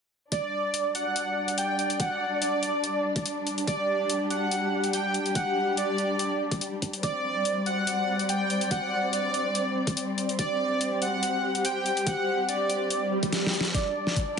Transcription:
0.32 string section G3 D4 D5, supersaw synth D5, kick, closed hi-hat
0.74 closed hi-hat
0.95 supersaw synth F#5, closed hi-hat
1.16 closed hi-hat
1.48 closed hi-hat
1.58 supersaw synth G5, closed hi-hat
1.79 closed hi-hat
1.90 closed hi-hat
2.00 supersaw synth F#5, kick, closed hi-hat
2.42 supersaw synth D5, closed hi-hat
2.63 closed hi-hat
2.84 closed hi-hat
3.16 kick, closed hi-hat
3.26 closed hi-hat
3.47 closed hi-hat
3.58 closed hi-hat
3.67 string section G4, supersaw synth D5, kick, closed hi-hat
4.10 closed hi-hat
4.30 supersaw synth F#5, closed hi-hat
4.51 closed hi-hat
4.84 closed hi-hat
4.93 supersaw synth G5, closed hi-hat
5.14 closed hi-hat
5.26 closed hi-hat
5.35 supersaw synth F#5, kick, closed hi-hat
5.77 supersaw synth D5, closed hi-hat
5.98 closed hi-hat
6.19 closed hi-hat
6.51 kick, closed hi-hat
6.61 closed hi-hat
6.82 kick, closed hi-hat
6.93 closed hi-hat
7.03 string section C4 D5, supersaw synth D5, kick, closed hi-hat
7.45 closed hi-hat
7.66 supersaw synth F#5, closed hi-hat
7.87 closed hi-hat
8.19 closed hi-hat
8.29 supersaw synth G5, closed hi-hat
8.50 closed hi-hat
8.61 closed hi-hat
8.71 supersaw synth F#5, kick, closed hi-hat
9.13 supersaw synth D5, closed hi-hat
9.34 closed hi-hat
9.55 closed hi-hat
9.87 kick, closed hi-hat
9.97 closed hi-hat
10.18 closed hi-hat
10.29 closed hi-hat
10.39 string section G4, supersaw synth D5, kick, closed hi-hat
10.81 closed hi-hat
11.02 supersaw synth F#5, closed hi-hat
11.23 closed hi-hat
11.55 closed hi-hat
11.65 supersaw synth G5, closed hi-hat
11.86 closed hi-hat
11.97 closed hi-hat
12.07 supersaw synth F#5, kick, closed hi-hat
12.49 supersaw synth D5, closed hi-hat
12.70 closed hi-hat
12.90 closed hi-hat, swell
13.23 kick, closed hi-hat
13.33 snare, closed hi-hat
13.47 snare
13.54 closed hi-hat
13.61 snare
13.65 closed hi-hat
13.74 string section G3 D4 D5, supersaw synth D5, kick, snare, closed hi-hat, riser
14.07 snare
14.16 kick, closed hi-hat

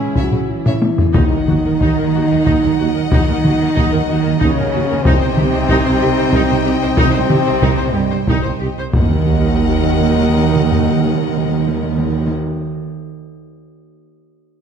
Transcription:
Already playing: trombone section E3 C#4, french horn section G#3, viola section E4, flute section G#4, violin section G#4
0.15 double bass section C#2, tuba C#2, cello section C#3 F#3, french horn section F#4, violin section C#5 E5, taiko
0.32 cello section C#3, violin section E4 G#4, taiko low-mid
0.49 cello section E3, french horn section E4
0.66 cello section C#3, violin section C#5 E5, taiko low-mid
0.82 taiko high
0.98 cello section C#3, violin section G#4 C#5, taiko low
1.14 double bass section D#2, tuba D#2, timpani D#3, cello section D#3, trombone section F#3 D#4, viola section D#4, french horn section D#4, violin section D#5 F#5, taiko, impact
1.30 double bass section D#2, viola section A#4
1.48 double bass section D#2, tuba D#2, viola section F#4, taiko mid
1.64 double bass section D#2, viola section A#4
1.80 double bass section D#2, tuba D#2, viola section D#4, taiko
1.98 double bass section D#2, viola section A#4
2.14 double bass section D#2, tuba D#2, viola section F#4
2.31 double bass section D#2, viola section A#4
2.45 double bass section D#2, tuba D#2, viola section D#4, taiko
2.62 double bass section D#2, viola section A#4
2.78 double bass section D#2, tuba D#2, viola section F#4
2.94 double bass section D#2, viola section A#4
3.11 double bass section D#2, tuba D#2, cello section D#3, french horn section D#4, viola section D#4, taiko
3.28 double bass section D#2, viola section A#4
3.43 double bass section D#2, tuba D#2, viola section F#4, taiko mid
3.60 double bass section D#2, viola section A#4
3.75 double bass section D#2, tuba D#2, viola section D#4, taiko
3.91 double bass section D#2, viola section A#4
4.09 double bass section D#2, tuba D#2, cello section D#3, french horn section D#4, viola section F#4
4.23 double bass section D#2, viola section A#4
4.39 double bass section D#2, tuba D#2, cello section C#3, french horn section C#4, viola section D#4, taiko
4.58 double bass section D#2, viola section A#4
4.73 tuba D#2, double bass section D#2, viola section F#4
4.89 double bass section D#2, viola section A#4
5.02 french horn section C4, trombone section D#4, viola section D#4, violin section D#5 G5, taiko
5.06 tuba C2, double bass section C2, cello section C3, trombone section G3
5.21 double bass section C2, viola section C5
5.37 tuba C2, double bass section C2, viola section G4, taiko mid
5.53 double bass section C2, viola section C5
5.69 tuba C2, double bass section C2, viola section D#4, taiko
5.85 double bass section C2, viola section C5
6.01 tuba C2, double bass section C2, viola section G4
6.18 double bass section C2, viola section C5
6.33 tuba C2, double bass section C2, viola section D#4, taiko
6.48 double bass section C2, viola section C5
6.66 tuba C2, double bass section C2, viola section G4
6.82 double bass section C2, viola section C5
6.97 tuba C2, double bass section C2, cello section C3, french horn section C4, viola section D#4, taiko
7.12 viola section C5
7.17 double bass section C2
7.29 tuba C2, viola section G4, taiko mid
7.33 double bass section C2
7.46 double bass section C2, viola section C5
7.61 tuba C2, double bass section C2, viola section D#4, taiko
7.78 double bass section C2, viola section C5
7.93 tuba C2, cello section G2, french horn section G3, viola section G4
7.98 double bass section C2
8.11 double bass section C2, viola section C5
8.27 tuba C2, double bass section C2, viola section D#4, taiko
8.43 double bass section C2, viola section C5
8.60 tuba C2, double bass section C2, viola section G4
8.78 double bass section C2, viola section C5
8.91 double bass section D#2, tuba D#2, french horn section D#3, timpani D#3, cello section D#3, trombone section D#4, viola section A#4, violin section D#5 F#5, taiko, sub drop
8.95 trombone section F#3
9.02 timpani D#3
9.10 timpani D#3
9.18 timpani D#3
9.25 timpani D#3
9.33 timpani D#3
9.40 timpani D#3
9.47 timpani D#3
9.54 timpani D#3
9.62 timpani D#3
9.70 timpani D#3
9.77 timpani D#3
9.85 timpani D#3
9.92 timpani D#3
10.00 timpani D#3
10.07 timpani D#3
10.14 timpani D#3
10.21 timpani D#3
10.29 timpani D#3
10.37 timpani D#3
10.44 timpani D#3
10.52 timpani D#3, taiko mid
10.60 timpani D#3
10.67 timpani D#3
10.72 timpani D#3, taiko low
10.82 timpani D#3
10.90 timpani D#3
10.98 timpani D#3
11.06 timpani D#3
11.13 timpani D#3
11.21 timpani D#3
11.29 timpani D#3
11.37 timpani D#3
11.45 timpani D#3
11.51 timpani D#3
11.59 timpani D#3
11.67 timpani D#3
11.76 timpani D#3
11.83 timpani D#3
11.90 timpani D#3
11.98 timpani D#3
12.05 timpani D#3
12.12 timpani D#3
12.19 timpani D#3
12.26 timpani D#3

